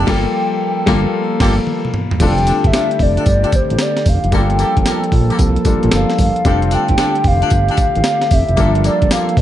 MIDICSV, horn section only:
0, 0, Header, 1, 2, 480
1, 0, Start_track
1, 0, Tempo, 530973
1, 70, Time_signature, 4, 2, 24, 8
1, 8514, End_track
2, 0, Start_track
2, 0, Title_t, "Horn section"
2, 0, Program_c, 0, 61
2, 67, Note_on_c, 0, 58, 95
2, 68, Note_on_c, 0, 65, 105
2, 70, Note_on_c, 0, 67, 98
2, 71, Note_on_c, 0, 69, 105
2, 201, Note_off_c, 0, 58, 0
2, 201, Note_off_c, 0, 65, 0
2, 203, Note_off_c, 0, 67, 0
2, 203, Note_off_c, 0, 69, 0
2, 782, Note_on_c, 0, 58, 107
2, 783, Note_on_c, 0, 65, 102
2, 784, Note_on_c, 0, 67, 97
2, 787, Note_on_c, 0, 69, 100
2, 917, Note_off_c, 0, 58, 0
2, 918, Note_off_c, 0, 65, 0
2, 919, Note_off_c, 0, 67, 0
2, 921, Note_off_c, 0, 69, 0
2, 1267, Note_on_c, 0, 58, 96
2, 1268, Note_on_c, 0, 65, 101
2, 1269, Note_on_c, 0, 67, 103
2, 1272, Note_on_c, 0, 69, 102
2, 1401, Note_off_c, 0, 58, 0
2, 1401, Note_off_c, 0, 65, 0
2, 1402, Note_off_c, 0, 67, 0
2, 1404, Note_off_c, 0, 69, 0
2, 1986, Note_on_c, 0, 62, 90
2, 1987, Note_on_c, 0, 65, 84
2, 1990, Note_on_c, 0, 67, 82
2, 1992, Note_on_c, 0, 69, 95
2, 2133, Note_off_c, 0, 62, 0
2, 2133, Note_off_c, 0, 65, 0
2, 2135, Note_off_c, 0, 67, 0
2, 2136, Note_off_c, 0, 69, 0
2, 2224, Note_on_c, 0, 62, 72
2, 2227, Note_on_c, 0, 65, 73
2, 2229, Note_on_c, 0, 67, 72
2, 2231, Note_on_c, 0, 69, 85
2, 2372, Note_off_c, 0, 62, 0
2, 2373, Note_off_c, 0, 65, 0
2, 2375, Note_off_c, 0, 67, 0
2, 2376, Note_off_c, 0, 69, 0
2, 2466, Note_on_c, 0, 62, 73
2, 2468, Note_on_c, 0, 65, 72
2, 2468, Note_on_c, 0, 67, 69
2, 2472, Note_on_c, 0, 69, 81
2, 2613, Note_off_c, 0, 62, 0
2, 2614, Note_off_c, 0, 65, 0
2, 2614, Note_off_c, 0, 67, 0
2, 2616, Note_off_c, 0, 69, 0
2, 2863, Note_on_c, 0, 62, 74
2, 2867, Note_on_c, 0, 65, 68
2, 2868, Note_on_c, 0, 67, 69
2, 2869, Note_on_c, 0, 69, 80
2, 2939, Note_off_c, 0, 62, 0
2, 2941, Note_off_c, 0, 65, 0
2, 2941, Note_off_c, 0, 67, 0
2, 2941, Note_off_c, 0, 69, 0
2, 3101, Note_on_c, 0, 62, 79
2, 3104, Note_on_c, 0, 65, 70
2, 3106, Note_on_c, 0, 67, 68
2, 3107, Note_on_c, 0, 69, 86
2, 3177, Note_off_c, 0, 62, 0
2, 3179, Note_off_c, 0, 65, 0
2, 3180, Note_off_c, 0, 67, 0
2, 3181, Note_off_c, 0, 69, 0
2, 3906, Note_on_c, 0, 58, 95
2, 3908, Note_on_c, 0, 65, 84
2, 3912, Note_on_c, 0, 67, 80
2, 3912, Note_on_c, 0, 69, 99
2, 4053, Note_off_c, 0, 58, 0
2, 4054, Note_off_c, 0, 65, 0
2, 4056, Note_off_c, 0, 67, 0
2, 4056, Note_off_c, 0, 69, 0
2, 4146, Note_on_c, 0, 58, 76
2, 4148, Note_on_c, 0, 65, 72
2, 4149, Note_on_c, 0, 67, 74
2, 4153, Note_on_c, 0, 69, 88
2, 4293, Note_off_c, 0, 58, 0
2, 4294, Note_off_c, 0, 65, 0
2, 4294, Note_off_c, 0, 67, 0
2, 4297, Note_off_c, 0, 69, 0
2, 4387, Note_on_c, 0, 58, 78
2, 4390, Note_on_c, 0, 65, 70
2, 4391, Note_on_c, 0, 67, 72
2, 4393, Note_on_c, 0, 69, 82
2, 4533, Note_off_c, 0, 58, 0
2, 4535, Note_off_c, 0, 65, 0
2, 4535, Note_off_c, 0, 67, 0
2, 4537, Note_off_c, 0, 69, 0
2, 4784, Note_on_c, 0, 58, 80
2, 4785, Note_on_c, 0, 65, 72
2, 4786, Note_on_c, 0, 67, 75
2, 4787, Note_on_c, 0, 69, 89
2, 4859, Note_off_c, 0, 58, 0
2, 4859, Note_off_c, 0, 65, 0
2, 4860, Note_off_c, 0, 67, 0
2, 4861, Note_off_c, 0, 69, 0
2, 5830, Note_on_c, 0, 62, 86
2, 5831, Note_on_c, 0, 65, 81
2, 5833, Note_on_c, 0, 67, 87
2, 5835, Note_on_c, 0, 69, 98
2, 5975, Note_off_c, 0, 62, 0
2, 5976, Note_off_c, 0, 65, 0
2, 5977, Note_off_c, 0, 67, 0
2, 5978, Note_off_c, 0, 69, 0
2, 6071, Note_on_c, 0, 62, 77
2, 6072, Note_on_c, 0, 65, 72
2, 6075, Note_on_c, 0, 67, 67
2, 6075, Note_on_c, 0, 69, 88
2, 6216, Note_off_c, 0, 62, 0
2, 6216, Note_off_c, 0, 65, 0
2, 6217, Note_off_c, 0, 67, 0
2, 6218, Note_off_c, 0, 69, 0
2, 6305, Note_on_c, 0, 62, 83
2, 6308, Note_on_c, 0, 65, 69
2, 6310, Note_on_c, 0, 67, 78
2, 6311, Note_on_c, 0, 69, 85
2, 6453, Note_off_c, 0, 62, 0
2, 6454, Note_off_c, 0, 65, 0
2, 6455, Note_off_c, 0, 67, 0
2, 6456, Note_off_c, 0, 69, 0
2, 6711, Note_on_c, 0, 62, 83
2, 6712, Note_on_c, 0, 65, 75
2, 6716, Note_on_c, 0, 67, 69
2, 6718, Note_on_c, 0, 69, 86
2, 6783, Note_off_c, 0, 62, 0
2, 6783, Note_off_c, 0, 65, 0
2, 6785, Note_off_c, 0, 67, 0
2, 6786, Note_off_c, 0, 69, 0
2, 6952, Note_on_c, 0, 62, 73
2, 6954, Note_on_c, 0, 65, 70
2, 6956, Note_on_c, 0, 67, 77
2, 6957, Note_on_c, 0, 69, 86
2, 7023, Note_off_c, 0, 62, 0
2, 7024, Note_off_c, 0, 65, 0
2, 7025, Note_off_c, 0, 67, 0
2, 7025, Note_off_c, 0, 69, 0
2, 7747, Note_on_c, 0, 58, 93
2, 7750, Note_on_c, 0, 65, 77
2, 7750, Note_on_c, 0, 67, 82
2, 7754, Note_on_c, 0, 69, 100
2, 7894, Note_off_c, 0, 58, 0
2, 7895, Note_off_c, 0, 65, 0
2, 7895, Note_off_c, 0, 67, 0
2, 7897, Note_off_c, 0, 69, 0
2, 7989, Note_on_c, 0, 58, 78
2, 7991, Note_on_c, 0, 65, 74
2, 7993, Note_on_c, 0, 67, 68
2, 7994, Note_on_c, 0, 69, 84
2, 8135, Note_off_c, 0, 58, 0
2, 8135, Note_off_c, 0, 65, 0
2, 8136, Note_off_c, 0, 67, 0
2, 8137, Note_off_c, 0, 69, 0
2, 8230, Note_on_c, 0, 58, 81
2, 8232, Note_on_c, 0, 65, 72
2, 8234, Note_on_c, 0, 67, 72
2, 8235, Note_on_c, 0, 69, 81
2, 8375, Note_off_c, 0, 58, 0
2, 8376, Note_off_c, 0, 65, 0
2, 8377, Note_off_c, 0, 67, 0
2, 8378, Note_off_c, 0, 69, 0
2, 8514, End_track
0, 0, End_of_file